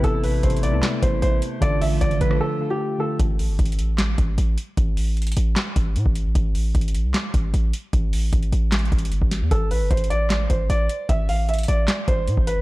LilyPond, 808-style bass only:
\new Staff \with { instrumentName = "808-style bass" } { \clef bass \time 4/4 \key a \minor \tempo 4 = 152 a,,4 a,,8. c,16 r8 a,,8 a,,8 r8 | a,,4 a,,8 a,,8 r2 | a,,8. g,,16 a,,4. a,,8 a,,8 r8 | a,,4. a,,8 r8 a,,8 a,16 a,,8. |
a,,4 a,,8. c,16 r8 a,,8 a,,8 r8 | a,,4 a,,8 a,,4 a,,8 g,,16 a,,8 e,16 | a,,8. g,,16 a,,4. a,,8 a,,8 r8 | a,,4. a,,8 r8 a,,8 a,16 a,,8. | }